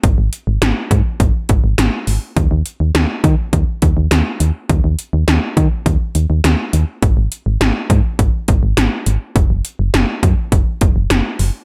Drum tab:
HH |xxxxxxxo|xxxxxxxx|xxxxxxxx|xxxxxxxx|
SD |--o---o-|--o---o-|--o---o-|--o---o-|
BD |o--ooo--|o--ooo--|o--oo---|o--ooo--|

HH |xxxxxxxo|
SD |--o---o-|
BD |o--ooo--|